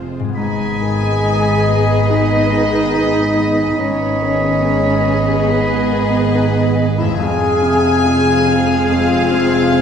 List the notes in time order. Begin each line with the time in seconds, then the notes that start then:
Already playing: F1 F2 C3 G#3 C4 F4 G#4 C5
0.19 G#2
0.24 G#3
0.29 B3
0.33 G#2 G#4 B5
0.37 G#1 G#2 G#3 B3 G#4 D#5 G#5
0.82 D#3
1.24 B3 D#4 G#4
1.68 B3
2.10 G#2 D#4 D#5
2.53 D#3
2.96 B3 D#4 G#4
3.38 B3
3.80 G#1 G#2 G#3 B3 C#4 G#4 C#5 D#5 B5
4.22 D#3
4.64 B3 D#4 G#4
5.07 B3
5.48 G#2 B3 B4
5.92 D#3
6.35 B3 D#4 G#4
6.77 B3
6.98 F2 E4 E5
7.06 G#3
7.11 C4
7.15 F2 G#4
7.19 F1 F2 G#3 C4 G#4 F5 G#5
7.62 C3
8.05 C4 F4 G#4
8.46 C4
8.87 F2 F4 F5
9.31 C3
9.71 C4 F4 G#4